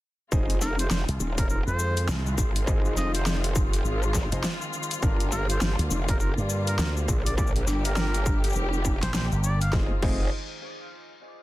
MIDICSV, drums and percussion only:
0, 0, Header, 1, 2, 480
1, 0, Start_track
1, 0, Tempo, 588235
1, 260, Time_signature, 4, 2, 24, 8
1, 9324, End_track
2, 0, Start_track
2, 0, Title_t, "Drums"
2, 261, Note_on_c, 9, 36, 125
2, 262, Note_on_c, 9, 82, 46
2, 342, Note_off_c, 9, 36, 0
2, 344, Note_off_c, 9, 82, 0
2, 406, Note_on_c, 9, 42, 54
2, 406, Note_on_c, 9, 82, 21
2, 488, Note_off_c, 9, 42, 0
2, 488, Note_off_c, 9, 82, 0
2, 501, Note_on_c, 9, 40, 40
2, 501, Note_on_c, 9, 82, 75
2, 583, Note_off_c, 9, 40, 0
2, 583, Note_off_c, 9, 82, 0
2, 647, Note_on_c, 9, 42, 66
2, 647, Note_on_c, 9, 82, 32
2, 728, Note_off_c, 9, 42, 0
2, 728, Note_off_c, 9, 82, 0
2, 742, Note_on_c, 9, 38, 115
2, 742, Note_on_c, 9, 82, 42
2, 823, Note_off_c, 9, 38, 0
2, 823, Note_off_c, 9, 82, 0
2, 886, Note_on_c, 9, 42, 54
2, 886, Note_on_c, 9, 82, 20
2, 968, Note_off_c, 9, 42, 0
2, 968, Note_off_c, 9, 82, 0
2, 981, Note_on_c, 9, 82, 73
2, 1063, Note_off_c, 9, 82, 0
2, 1126, Note_on_c, 9, 36, 106
2, 1126, Note_on_c, 9, 42, 73
2, 1126, Note_on_c, 9, 82, 33
2, 1207, Note_off_c, 9, 36, 0
2, 1208, Note_off_c, 9, 42, 0
2, 1208, Note_off_c, 9, 82, 0
2, 1222, Note_on_c, 9, 82, 43
2, 1303, Note_off_c, 9, 82, 0
2, 1368, Note_on_c, 9, 82, 22
2, 1450, Note_off_c, 9, 82, 0
2, 1463, Note_on_c, 9, 82, 75
2, 1545, Note_off_c, 9, 82, 0
2, 1608, Note_on_c, 9, 42, 72
2, 1608, Note_on_c, 9, 82, 32
2, 1690, Note_off_c, 9, 42, 0
2, 1690, Note_off_c, 9, 82, 0
2, 1704, Note_on_c, 9, 38, 124
2, 1704, Note_on_c, 9, 82, 45
2, 1785, Note_off_c, 9, 38, 0
2, 1785, Note_off_c, 9, 82, 0
2, 1848, Note_on_c, 9, 82, 23
2, 1930, Note_off_c, 9, 82, 0
2, 1941, Note_on_c, 9, 36, 65
2, 1943, Note_on_c, 9, 82, 71
2, 2023, Note_off_c, 9, 36, 0
2, 2025, Note_off_c, 9, 82, 0
2, 2088, Note_on_c, 9, 42, 72
2, 2088, Note_on_c, 9, 82, 32
2, 2170, Note_off_c, 9, 42, 0
2, 2170, Note_off_c, 9, 82, 0
2, 2181, Note_on_c, 9, 36, 127
2, 2184, Note_on_c, 9, 82, 41
2, 2263, Note_off_c, 9, 36, 0
2, 2266, Note_off_c, 9, 82, 0
2, 2328, Note_on_c, 9, 82, 20
2, 2410, Note_off_c, 9, 82, 0
2, 2424, Note_on_c, 9, 40, 42
2, 2424, Note_on_c, 9, 82, 70
2, 2506, Note_off_c, 9, 40, 0
2, 2506, Note_off_c, 9, 82, 0
2, 2567, Note_on_c, 9, 42, 72
2, 2567, Note_on_c, 9, 82, 30
2, 2649, Note_off_c, 9, 42, 0
2, 2649, Note_off_c, 9, 82, 0
2, 2663, Note_on_c, 9, 38, 126
2, 2663, Note_on_c, 9, 82, 42
2, 2745, Note_off_c, 9, 38, 0
2, 2745, Note_off_c, 9, 82, 0
2, 2808, Note_on_c, 9, 42, 53
2, 2808, Note_on_c, 9, 82, 19
2, 2890, Note_off_c, 9, 42, 0
2, 2890, Note_off_c, 9, 82, 0
2, 2902, Note_on_c, 9, 36, 113
2, 2902, Note_on_c, 9, 82, 73
2, 2983, Note_off_c, 9, 36, 0
2, 2984, Note_off_c, 9, 82, 0
2, 3048, Note_on_c, 9, 42, 70
2, 3048, Note_on_c, 9, 82, 31
2, 3129, Note_off_c, 9, 42, 0
2, 3129, Note_off_c, 9, 82, 0
2, 3144, Note_on_c, 9, 82, 39
2, 3225, Note_off_c, 9, 82, 0
2, 3287, Note_on_c, 9, 82, 21
2, 3369, Note_off_c, 9, 82, 0
2, 3382, Note_on_c, 9, 36, 63
2, 3383, Note_on_c, 9, 38, 63
2, 3383, Note_on_c, 9, 82, 75
2, 3463, Note_off_c, 9, 36, 0
2, 3464, Note_off_c, 9, 38, 0
2, 3464, Note_off_c, 9, 82, 0
2, 3527, Note_on_c, 9, 42, 70
2, 3527, Note_on_c, 9, 82, 33
2, 3609, Note_off_c, 9, 42, 0
2, 3609, Note_off_c, 9, 82, 0
2, 3622, Note_on_c, 9, 38, 127
2, 3622, Note_on_c, 9, 82, 43
2, 3703, Note_off_c, 9, 38, 0
2, 3703, Note_off_c, 9, 82, 0
2, 3768, Note_on_c, 9, 82, 21
2, 3849, Note_off_c, 9, 82, 0
2, 3862, Note_on_c, 9, 82, 32
2, 3942, Note_off_c, 9, 82, 0
2, 3942, Note_on_c, 9, 82, 41
2, 4007, Note_off_c, 9, 82, 0
2, 4007, Note_on_c, 9, 42, 70
2, 4007, Note_on_c, 9, 82, 31
2, 4023, Note_off_c, 9, 82, 0
2, 4023, Note_on_c, 9, 82, 58
2, 4089, Note_off_c, 9, 42, 0
2, 4101, Note_on_c, 9, 36, 127
2, 4102, Note_off_c, 9, 82, 0
2, 4102, Note_on_c, 9, 82, 41
2, 4183, Note_off_c, 9, 36, 0
2, 4184, Note_off_c, 9, 82, 0
2, 4246, Note_on_c, 9, 42, 56
2, 4246, Note_on_c, 9, 82, 20
2, 4328, Note_off_c, 9, 42, 0
2, 4328, Note_off_c, 9, 82, 0
2, 4342, Note_on_c, 9, 40, 39
2, 4342, Note_on_c, 9, 82, 74
2, 4423, Note_off_c, 9, 40, 0
2, 4423, Note_off_c, 9, 82, 0
2, 4486, Note_on_c, 9, 42, 66
2, 4486, Note_on_c, 9, 82, 31
2, 4567, Note_off_c, 9, 42, 0
2, 4567, Note_off_c, 9, 82, 0
2, 4582, Note_on_c, 9, 38, 127
2, 4582, Note_on_c, 9, 82, 41
2, 4663, Note_off_c, 9, 38, 0
2, 4663, Note_off_c, 9, 82, 0
2, 4727, Note_on_c, 9, 42, 54
2, 4727, Note_on_c, 9, 82, 20
2, 4808, Note_off_c, 9, 42, 0
2, 4808, Note_off_c, 9, 82, 0
2, 4821, Note_on_c, 9, 82, 74
2, 4903, Note_off_c, 9, 82, 0
2, 4965, Note_on_c, 9, 36, 107
2, 4966, Note_on_c, 9, 42, 73
2, 4966, Note_on_c, 9, 82, 31
2, 5047, Note_off_c, 9, 36, 0
2, 5047, Note_off_c, 9, 42, 0
2, 5047, Note_off_c, 9, 82, 0
2, 5061, Note_on_c, 9, 82, 40
2, 5143, Note_off_c, 9, 82, 0
2, 5206, Note_on_c, 9, 82, 21
2, 5288, Note_off_c, 9, 82, 0
2, 5301, Note_on_c, 9, 82, 70
2, 5383, Note_off_c, 9, 82, 0
2, 5446, Note_on_c, 9, 42, 70
2, 5446, Note_on_c, 9, 82, 30
2, 5527, Note_off_c, 9, 42, 0
2, 5527, Note_off_c, 9, 82, 0
2, 5542, Note_on_c, 9, 38, 127
2, 5542, Note_on_c, 9, 82, 43
2, 5623, Note_off_c, 9, 38, 0
2, 5623, Note_off_c, 9, 82, 0
2, 5688, Note_on_c, 9, 82, 21
2, 5770, Note_off_c, 9, 82, 0
2, 5780, Note_on_c, 9, 36, 71
2, 5782, Note_on_c, 9, 82, 72
2, 5861, Note_off_c, 9, 36, 0
2, 5864, Note_off_c, 9, 82, 0
2, 5928, Note_on_c, 9, 42, 72
2, 5928, Note_on_c, 9, 82, 31
2, 6009, Note_off_c, 9, 42, 0
2, 6009, Note_off_c, 9, 82, 0
2, 6020, Note_on_c, 9, 36, 127
2, 6023, Note_on_c, 9, 82, 44
2, 6096, Note_off_c, 9, 82, 0
2, 6096, Note_on_c, 9, 82, 21
2, 6102, Note_off_c, 9, 36, 0
2, 6167, Note_on_c, 9, 42, 53
2, 6177, Note_off_c, 9, 82, 0
2, 6249, Note_off_c, 9, 42, 0
2, 6262, Note_on_c, 9, 40, 38
2, 6262, Note_on_c, 9, 82, 74
2, 6344, Note_off_c, 9, 40, 0
2, 6344, Note_off_c, 9, 82, 0
2, 6406, Note_on_c, 9, 42, 66
2, 6406, Note_on_c, 9, 82, 32
2, 6488, Note_off_c, 9, 42, 0
2, 6488, Note_off_c, 9, 82, 0
2, 6501, Note_on_c, 9, 38, 127
2, 6501, Note_on_c, 9, 82, 41
2, 6582, Note_off_c, 9, 38, 0
2, 6582, Note_off_c, 9, 82, 0
2, 6646, Note_on_c, 9, 42, 51
2, 6646, Note_on_c, 9, 82, 20
2, 6728, Note_off_c, 9, 42, 0
2, 6728, Note_off_c, 9, 82, 0
2, 6740, Note_on_c, 9, 36, 110
2, 6740, Note_on_c, 9, 82, 73
2, 6822, Note_off_c, 9, 36, 0
2, 6822, Note_off_c, 9, 82, 0
2, 6887, Note_on_c, 9, 42, 69
2, 6887, Note_on_c, 9, 82, 15
2, 6910, Note_off_c, 9, 82, 0
2, 6910, Note_on_c, 9, 82, 19
2, 6933, Note_off_c, 9, 82, 0
2, 6933, Note_on_c, 9, 82, 23
2, 6958, Note_off_c, 9, 82, 0
2, 6958, Note_on_c, 9, 82, 27
2, 6968, Note_off_c, 9, 42, 0
2, 6982, Note_off_c, 9, 82, 0
2, 6982, Note_on_c, 9, 82, 41
2, 7064, Note_off_c, 9, 82, 0
2, 7126, Note_on_c, 9, 82, 21
2, 7208, Note_off_c, 9, 82, 0
2, 7220, Note_on_c, 9, 36, 64
2, 7221, Note_on_c, 9, 82, 73
2, 7302, Note_off_c, 9, 36, 0
2, 7302, Note_off_c, 9, 82, 0
2, 7366, Note_on_c, 9, 38, 64
2, 7366, Note_on_c, 9, 42, 65
2, 7366, Note_on_c, 9, 82, 32
2, 7447, Note_off_c, 9, 38, 0
2, 7447, Note_off_c, 9, 42, 0
2, 7447, Note_off_c, 9, 82, 0
2, 7461, Note_on_c, 9, 38, 127
2, 7461, Note_on_c, 9, 82, 43
2, 7543, Note_off_c, 9, 38, 0
2, 7543, Note_off_c, 9, 82, 0
2, 7606, Note_on_c, 9, 82, 21
2, 7687, Note_off_c, 9, 82, 0
2, 7701, Note_on_c, 9, 82, 69
2, 7783, Note_off_c, 9, 82, 0
2, 7846, Note_on_c, 9, 42, 67
2, 7846, Note_on_c, 9, 82, 32
2, 7928, Note_off_c, 9, 42, 0
2, 7928, Note_off_c, 9, 82, 0
2, 7940, Note_on_c, 9, 36, 119
2, 7940, Note_on_c, 9, 38, 89
2, 8021, Note_off_c, 9, 38, 0
2, 8022, Note_off_c, 9, 36, 0
2, 8180, Note_on_c, 9, 49, 89
2, 8181, Note_on_c, 9, 36, 117
2, 8262, Note_off_c, 9, 36, 0
2, 8262, Note_off_c, 9, 49, 0
2, 9324, End_track
0, 0, End_of_file